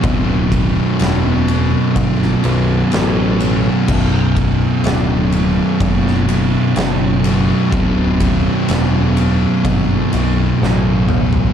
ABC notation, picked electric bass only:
X:1
M:4/4
L:1/8
Q:1/4=62
K:Clyd
V:1 name="Picked electric bass" clef=bass
D,,,2 E,,,2 G,,, B,,, A,,,2 | B,,,,2 D,,,2 F,,,2 F,,,2 | D,,,2 E,,,2 G,,, B,,, A,,,2 |]